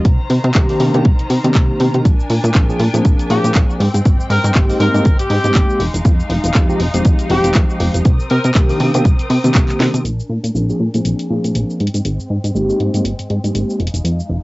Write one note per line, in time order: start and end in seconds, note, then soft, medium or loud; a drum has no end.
0.04 0.19 C2 loud
0.04 2.03 D#3 medium
0.04 2.03 C5 medium
0.04 2.03 A#5 medium
0.04 kick loud
0.04 closed hi-hat medium
0.19 0.28 C3 soft
0.30 0.39 C3 loud
0.30 open hi-hat loud
0.44 0.51 C3 loud
0.44 closed hi-hat medium
0.54 0.72 C2 loud
0.54 0.67 D#3 medium
0.54 0.67 A#3 medium
0.54 0.67 C4 medium
0.54 0.67 D4 medium
0.54 0.67 G4 medium
0.54 kick loud
0.54 clap loud
0.69 0.91 D#3 medium
0.69 0.91 A#3 medium
0.69 0.91 C4 medium
0.69 0.91 D4 medium
0.69 0.91 G4 medium
0.69 open hi-hat medium
0.80 0.89 C3 loud
0.80 open hi-hat loud
0.94 1.01 C3 medium
0.94 1.04 D#3 loud
0.94 1.04 A#3 medium
0.94 1.04 C4 medium
0.94 1.04 D4 medium
0.94 1.04 G4 loud
0.94 closed hi-hat soft
1.05 1.14 C2 medium
1.05 kick loud
1.05 closed hi-hat medium
1.19 1.28 C3 soft
1.19 closed hi-hat medium
1.30 1.39 C3 medium
1.30 open hi-hat loud
1.44 1.51 C3 medium
1.44 2.04 D#3 medium
1.44 2.04 A#3 medium
1.44 2.04 C4 medium
1.44 2.04 D4 medium
1.44 2.04 G4 medium
1.44 closed hi-hat soft
1.55 1.72 C2 loud
1.55 kick loud
1.55 clap loud
1.55 closed hi-hat medium
1.80 1.89 C3 loud
1.80 open hi-hat loud
1.94 2.01 C3 medium
1.94 closed hi-hat medium
2.05 2.22 A#1 loud
2.05 3.78 D4 medium
2.05 3.78 A#4 medium
2.05 3.78 G#5 medium
2.05 kick loud
2.05 closed hi-hat medium
2.05 shaker medium
2.20 shaker soft
2.30 2.39 A#2 medium
2.30 open hi-hat loud
2.44 2.51 A#2 loud
2.44 closed hi-hat soft
2.44 shaker medium
2.55 2.72 A#1 loud
2.55 2.66 F3 medium
2.55 2.66 A#3 medium
2.55 2.66 C4 medium
2.55 2.66 D4 medium
2.55 2.66 G#4 medium
2.55 kick loud
2.55 clap loud
2.55 shaker medium
2.69 2.79 F3 medium
2.69 2.79 A#3 medium
2.69 2.79 C4 medium
2.69 2.79 D4 medium
2.69 2.79 G#4 loud
2.69 shaker soft
2.80 2.89 A#2 loud
2.80 open hi-hat loud
2.94 3.01 A#2 medium
2.94 3.27 F3 medium
2.94 3.27 A#3 medium
2.94 3.28 C4 medium
2.94 3.28 D4 medium
2.94 3.28 G#4 loud
2.94 closed hi-hat soft
2.94 shaker medium
3.05 3.14 A#1 medium
3.05 kick loud
3.05 closed hi-hat medium
3.05 shaker medium
3.19 closed hi-hat medium
3.19 shaker soft
3.30 3.39 A#2 loud
3.30 3.79 F3 medium
3.30 3.79 A#3 medium
3.30 3.79 C4 medium
3.30 3.79 D4 medium
3.30 3.51 G4 medium
3.30 3.79 G#4 loud
3.30 open hi-hat loud
3.44 3.51 A#2 medium
3.44 closed hi-hat soft
3.44 shaker medium
3.55 3.64 A#1 loud
3.55 kick loud
3.55 clap loud
3.55 closed hi-hat medium
3.55 shaker medium
3.70 shaker soft
3.80 3.89 G#2 loud
3.80 8.01 G#3 medium
3.80 5.78 C4 medium
3.80 5.78 G5 medium
3.80 open hi-hat loud
3.94 4.01 G#2 medium
3.94 closed hi-hat medium
3.94 shaker medium
4.05 4.19 G#1 loud
4.05 kick loud
4.05 closed hi-hat medium
4.05 shaker medium
4.19 4.28 G#2 soft
4.19 shaker soft
4.30 4.39 G#2 loud
4.30 4.51 A#4 medium
4.30 open hi-hat medium
4.44 4.51 G#2 loud
4.44 closed hi-hat medium
4.44 shaker medium
4.55 4.72 G#1 loud
4.55 4.67 G#3 medium
4.55 4.67 A#3 medium
4.55 4.67 C4 medium
4.55 4.67 D#4 medium
4.55 4.67 G4 medium
4.55 kick loud
4.55 clap loud
4.55 shaker medium
4.69 4.91 G#3 medium
4.69 4.91 A#3 medium
4.69 4.91 C4 medium
4.69 4.91 D#4 medium
4.69 4.91 G4 medium
4.69 open hi-hat medium
4.69 shaker soft
4.80 4.89 G#2 medium
4.80 5.16 A#4 medium
4.80 open hi-hat loud
4.94 5.01 G#2 medium
4.94 5.04 G#3 loud
4.94 5.04 A#3 medium
4.94 5.04 C4 medium
4.94 5.04 D#4 medium
4.94 5.05 G4 loud
4.94 closed hi-hat soft
4.94 shaker medium
5.05 5.14 G#1 medium
5.05 kick loud
5.05 closed hi-hat medium
5.05 shaker medium
5.19 5.28 G#2 soft
5.19 5.86 G4 loud
5.19 closed hi-hat medium
5.19 shaker soft
5.30 5.39 G#2 loud
5.30 open hi-hat loud
5.44 5.51 G#2 medium
5.44 5.79 G#3 medium
5.44 5.79 A#3 medium
5.44 5.79 C4 medium
5.44 5.79 D#4 medium
5.44 5.79 G4 medium
5.44 closed hi-hat medium
5.44 shaker medium
5.55 5.64 G#1 loud
5.55 kick loud
5.55 clap loud
5.55 closed hi-hat medium
5.55 shaker medium
5.70 shaker soft
5.80 5.89 F1 loud
5.80 8.03 D#4 medium
5.80 8.03 F5 medium
5.80 open hi-hat loud
5.94 6.01 F1 medium
5.94 closed hi-hat medium
5.94 shaker medium
6.05 6.22 F2 loud
6.05 kick loud
6.05 closed hi-hat medium
6.05 shaker medium
6.20 shaker soft
6.30 6.39 F1 loud
6.30 open hi-hat loud
6.44 6.51 F1 loud
6.44 closed hi-hat medium
6.44 shaker medium
6.54 6.72 F2 loud
6.54 6.66 F3 medium
6.54 6.66 G#3 medium
6.54 6.66 C4 medium
6.54 6.66 D#4 medium
6.54 6.66 G4 medium
6.54 kick loud
6.54 clap loud
6.54 shaker medium
6.69 6.79 F3 medium
6.69 6.79 G#3 medium
6.69 6.79 C4 medium
6.69 6.79 D#4 medium
6.69 6.79 G4 loud
6.69 shaker soft
6.80 6.89 F1 loud
6.80 open hi-hat loud
6.94 7.01 F1 medium
6.94 7.27 F3 medium
6.94 7.27 G#3 medium
6.94 7.27 C4 medium
6.94 7.27 D#4 medium
6.94 7.28 G4 loud
6.94 closed hi-hat medium
6.94 shaker medium
7.05 7.14 F2 medium
7.05 kick loud
7.05 closed hi-hat medium
7.05 shaker medium
7.19 closed hi-hat medium
7.19 shaker soft
7.29 7.39 F1 loud
7.29 8.03 F3 medium
7.29 8.04 G#3 medium
7.29 8.04 C4 medium
7.29 8.04 D#4 medium
7.29 7.51 G4 medium
7.29 8.04 G4 loud
7.29 open hi-hat loud
7.44 7.51 F1 medium
7.44 closed hi-hat medium
7.44 shaker medium
7.54 7.64 F2 loud
7.54 kick loud
7.54 clap loud
7.54 closed hi-hat medium
7.54 shaker medium
7.70 shaker soft
7.80 7.89 F1 loud
7.80 open hi-hat loud
7.94 8.01 F1 medium
7.94 closed hi-hat medium
7.94 shaker medium
8.05 8.19 C2 loud
8.05 10.03 C4 medium
8.05 10.03 A#4 medium
8.05 10.03 D#6 medium
8.05 kick loud
8.05 closed hi-hat medium
8.05 shaker medium
8.20 8.28 C3 soft
8.20 shaker soft
8.30 8.39 C3 loud
8.30 8.51 A#4 medium
8.30 open hi-hat medium
8.44 8.51 C3 loud
8.44 closed hi-hat medium
8.44 shaker medium
8.55 8.72 C2 loud
8.55 8.67 D#3 medium
8.55 8.67 A#3 medium
8.55 8.67 C4 medium
8.55 8.67 D4 medium
8.55 8.67 G4 medium
8.55 kick loud
8.55 clap loud
8.55 shaker medium
8.69 8.91 D#3 medium
8.69 8.91 A#3 medium
8.69 8.91 C4 medium
8.69 8.91 D4 medium
8.69 8.91 G4 medium
8.69 open hi-hat medium
8.69 shaker soft
8.80 8.89 C3 loud
8.80 open hi-hat loud
8.94 9.01 C3 medium
8.94 9.04 D#3 loud
8.94 9.04 A#3 medium
8.94 9.04 C4 medium
8.94 9.05 D4 medium
8.94 9.05 G4 loud
8.94 closed hi-hat medium
8.94 shaker medium
9.05 9.14 C2 medium
9.05 kick loud
9.05 closed hi-hat medium
9.05 shaker medium
9.19 9.28 C3 soft
9.19 closed hi-hat medium
9.19 shaker soft
9.30 9.39 C3 loud
9.30 open hi-hat loud
9.44 9.51 C3 medium
9.44 10.04 D#3 medium
9.44 10.04 A#3 medium
9.44 10.04 C4 medium
9.44 10.04 D4 medium
9.44 10.04 G4 medium
9.44 closed hi-hat medium
9.44 shaker medium
9.55 9.72 C2 medium
9.55 kick loud
9.55 clap loud
9.55 closed hi-hat medium
9.55 shaker medium
9.69 clap soft
9.69 shaker soft
9.80 9.89 C3 medium
9.80 snare medium
9.80 open hi-hat loud
9.94 10.01 C3 medium
9.94 closed hi-hat medium
9.94 shaker medium
10.05 10.22 A#1 medium
10.05 11.78 D4 medium
10.05 11.78 A#4 medium
10.05 closed hi-hat medium
10.05 shaker medium
10.20 shaker soft
10.30 10.39 A#2 loud
10.44 10.51 A#2 medium
10.44 closed hi-hat medium
10.44 shaker medium
10.55 10.72 A#1 loud
10.55 10.66 F3 medium
10.55 10.66 A#3 medium
10.55 10.66 C4 medium
10.55 10.66 D4 medium
10.55 10.66 G#4 medium
10.55 shaker soft
10.69 10.79 F3 medium
10.69 10.79 A#3 medium
10.69 10.79 C4 medium
10.69 10.79 D4 medium
10.69 10.80 G#4 loud
10.69 shaker soft
10.80 10.89 A#2 medium
10.94 11.01 A#2 medium
10.94 11.27 F3 medium
10.94 11.27 A#3 medium
10.94 11.28 C4 medium
10.94 11.28 D4 medium
10.94 11.28 G#4 medium
10.94 closed hi-hat soft
10.94 shaker medium
11.05 11.14 A#1 medium
11.05 closed hi-hat medium
11.05 shaker medium
11.19 closed hi-hat medium
11.19 shaker soft
11.30 11.39 A#2 loud
11.30 11.79 F3 medium
11.30 11.79 A#3 medium
11.30 11.79 C4 medium
11.30 11.79 D4 medium
11.30 11.79 G#4 medium
11.44 11.51 A#2 medium
11.44 closed hi-hat medium
11.44 shaker medium
11.55 11.64 A#1 loud
11.55 closed hi-hat medium
11.55 shaker medium
11.70 shaker soft
11.79 11.89 G#2 loud
11.79 14.43 G#3 medium
11.79 13.78 C4 medium
11.79 13.78 G5 medium
11.79 closed hi-hat soft
11.87 closed hi-hat medium
11.94 12.01 G#2 medium
11.94 closed hi-hat medium
11.94 shaker medium
12.05 12.19 G#1 medium
12.05 closed hi-hat medium
12.05 shaker soft
12.19 12.28 G#2 soft
12.19 shaker soft
12.30 12.39 G#2 loud
12.44 12.51 G#2 loud
12.44 closed hi-hat soft
12.44 shaker medium
12.54 12.72 G#1 loud
12.54 12.67 G#3 medium
12.54 12.67 A#3 medium
12.54 12.67 C4 medium
12.54 12.67 D#4 medium
12.54 12.67 G4 medium
12.54 shaker soft
12.69 12.91 G#3 medium
12.69 12.91 A#3 medium
12.69 12.91 C4 medium
12.69 12.91 D#4 medium
12.69 12.91 G4 medium
12.69 shaker soft
12.80 12.89 G#2 medium
12.80 closed hi-hat soft
12.94 13.01 G#2 medium
12.94 13.04 G#3 medium
12.94 13.04 A#3 medium
12.94 13.04 C4 medium
12.94 13.04 D#4 medium
12.94 13.05 G4 loud
12.94 closed hi-hat soft
12.94 shaker medium
13.05 13.14 G#1 medium
13.05 closed hi-hat medium
13.05 shaker soft
13.19 13.28 G#2 soft
13.19 closed hi-hat medium
13.19 shaker soft
13.30 13.39 G#2 loud
13.30 closed hi-hat soft
13.44 13.51 G#2 medium
13.44 13.79 G#3 medium
13.44 13.79 A#3 medium
13.44 13.79 C4 medium
13.44 13.79 D#4 medium
13.44 13.79 G4 medium
13.44 closed hi-hat soft
13.44 shaker medium
13.55 13.64 G#1 loud
13.55 closed hi-hat medium
13.55 shaker medium
13.70 shaker soft
13.79 13.89 F1 loud
13.79 14.43 D#4 medium
13.79 14.43 F5 medium
13.79 closed hi-hat soft
13.87 closed hi-hat medium
13.94 14.01 F1 medium
13.94 closed hi-hat medium
13.94 shaker medium
14.05 14.22 F2 medium
14.05 closed hi-hat medium
14.05 shaker medium
14.20 shaker soft
14.30 14.39 F1 medium